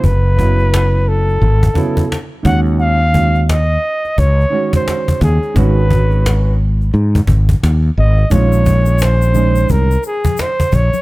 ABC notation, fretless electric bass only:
X:1
M:4/4
L:1/16
Q:"Swing 16ths" 1/4=87
K:Bbphr
V:1 name="Fretless electric bass" clef=bass
G,,,8 A,,,2 z4 E,,2- | E,,8 D,,2 z4 E,, z | A,,,8 A,,2 A,,,2 E,,2 A,,,2 | B,,,8 =C,,2 z4 B,,, z |]